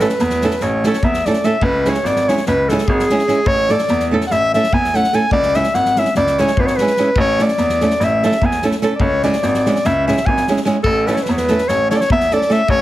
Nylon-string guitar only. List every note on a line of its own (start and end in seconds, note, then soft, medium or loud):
0.01 0.11 A3 medium
0.01 0.11 C#4 medium
0.01 0.12 E4 medium
0.01 0.12 A4 medium
0.43 0.53 A3 medium
0.43 0.54 C#4 medium
0.43 0.54 E4 medium
0.43 0.54 A4 medium
0.85 0.96 A3 medium
0.85 0.96 C#4 medium
0.85 0.96 E4 medium
0.85 0.96 A4 medium
1.27 1.36 A3 medium
1.27 1.36 C#4 medium
1.27 1.37 E4 medium
1.27 1.37 A4 medium
1.44 1.54 A3 medium
1.44 1.54 C#4 medium
1.44 1.55 E4 medium
1.44 1.55 A4 medium
1.86 1.96 G#3 medium
1.86 1.97 C#4 medium
1.86 1.97 E4 medium
1.86 1.97 G#4 medium
2.29 2.39 G#3 medium
2.29 2.39 C#4 medium
2.29 2.39 E4 medium
2.29 2.39 G#4 medium
2.71 2.81 G#3 medium
2.71 2.81 C#4 medium
2.71 2.82 E4 medium
2.71 2.82 G#4 medium
3.11 3.21 G#3 medium
3.11 3.21 C#4 medium
3.11 3.22 E4 medium
3.11 3.22 G#4 medium
3.28 3.39 G#3 medium
3.28 3.39 C#4 medium
3.28 3.39 E4 medium
3.28 3.39 G#4 medium
3.69 3.80 A3 medium
3.69 3.81 C#4 medium
3.69 3.81 E4 medium
3.69 3.81 A4 medium
4.11 4.23 A3 medium
4.11 4.23 C#4 medium
4.11 4.23 E4 medium
4.11 4.24 A4 medium
4.54 4.65 A3 medium
4.54 4.65 C#4 medium
4.54 4.66 E4 medium
4.54 4.66 A4 medium
4.94 5.05 A3 medium
4.94 5.05 C#4 medium
4.94 5.06 E4 medium
4.94 5.06 A4 medium
5.13 5.24 A3 medium
5.13 5.24 C#4 medium
5.13 5.24 E4 medium
5.13 5.24 A4 medium
5.55 5.65 G#3 medium
5.55 5.66 C#4 medium
5.55 5.66 E4 medium
5.55 5.66 G#4 medium
5.96 6.07 G#3 medium
5.96 6.08 C#4 medium
5.96 6.08 E4 soft
5.96 6.08 G#4 medium
6.39 6.50 G#3 medium
6.39 6.50 C#4 medium
6.39 6.50 E4 medium
6.39 6.50 G#4 medium
6.80 6.90 G#3 medium
6.80 6.91 C#4 medium
6.80 6.91 E4 medium
6.80 6.91 G#4 medium
6.98 7.08 G#3 medium
6.98 7.09 C#4 medium
6.98 7.09 E4 medium
6.98 7.09 G#4 medium
7.39 7.50 A3 medium
7.39 7.50 C#4 medium
7.39 7.51 E4 soft
7.39 7.51 A4 medium
7.81 7.92 A3 medium
7.81 7.92 C#4 soft
7.81 7.92 E4 soft
7.81 7.93 A4 medium
8.23 8.34 A3 medium
8.23 8.34 C#4 medium
8.23 8.34 E4 medium
8.23 8.35 A4 medium
8.63 8.74 A3 medium
8.63 8.74 C#4 medium
8.63 8.74 E4 medium
8.63 8.75 A4 medium
8.82 8.92 A3 medium
8.82 8.93 C#4 medium
8.82 8.93 E4 medium
8.82 8.93 A4 medium
9.24 9.34 G#3 medium
9.24 9.34 C#4 medium
9.24 9.35 E4 medium
9.24 9.35 G#4 medium
9.66 9.76 G#3 medium
9.66 9.77 C#4 soft
9.66 9.77 E4 medium
9.66 9.77 G#4 medium
10.08 10.18 G#3 medium
10.08 10.19 C#4 medium
10.08 10.19 E4 medium
10.08 10.19 G#4 medium
10.49 10.59 G#3 medium
10.49 10.59 C#4 medium
10.49 10.59 E4 medium
10.49 10.59 G#4 medium
10.65 10.76 G#3 medium
10.65 10.77 C#4 medium
10.65 10.77 E4 medium
10.65 10.77 G#4 medium
11.07 11.18 A3 medium
11.07 11.18 C#4 medium
11.07 11.19 E4 medium
11.07 11.19 A4 medium
11.49 11.60 A3 medium
11.49 11.61 C#4 soft
11.49 11.61 E4 medium
11.49 11.61 A4 medium
11.91 12.02 A3 medium
11.91 12.02 C#4 medium
11.91 12.02 E4 medium
11.91 12.03 A4 medium
12.31 12.42 A3 medium
12.31 12.42 C#4 medium
12.31 12.42 E4 medium
12.31 12.43 A4 medium
12.50 12.61 A3 medium
12.50 12.60 C#4 medium
12.50 12.61 E4 medium
12.50 12.61 A4 medium